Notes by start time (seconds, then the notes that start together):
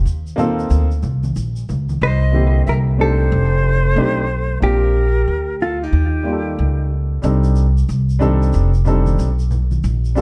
0.05 D#2, shaker
0.27 shaker
0.36 A#3 C4 D#4 F4 A4, high conga, low conga, shaker
0.59 shaker
0.70 D2, high conga, shaker
0.91 shaker
1.03 C2, low conga, shaker
1.24 high conga, shaker
1.36 A#1, shaker
1.56 shaker
1.69 C#2, low conga, shaker
1.89 high conga, shaker
2.01 C2 C5 D#5
2.32 D3 A#3 C4 E4 G4
2.67 C2 A#4 E5
2.98 A3 C4 D4 D#4 G4 A4 C5
3.32 F1
3.96 B1 A3 C4 D4 D#4 G4
4.60 A#1 A#3 C4 D4 F4 G4 A#4
5.28 D2
5.60 F4 A4
5.81 D#4 G4
5.93 D#2
6.23 G3 A#3 F4 G4 D5
6.33 A4
6.59 C#2
7.22 C2 G3 C4 D4 D#4 A4, shaker
7.44 shaker
7.56 shaker
7.77 shaker
7.89 C2, shaker
8.09 shaker
8.19 G3 C4 D4 D#4 A4, high conga, low conga, shaker
8.42 shaker
8.53 F1, shaker
8.74 shaker
8.85 G3 C4 D4 D#4 A4, low conga, shaker
9.06 high conga, shaker
9.19 B1, shaker
9.39 shaker
9.51 low conga, shaker
9.71 high conga, shaker
9.84 A#1, shaker
10.05 shaker
10.15 G3 C4 D4 F4 A4, shaker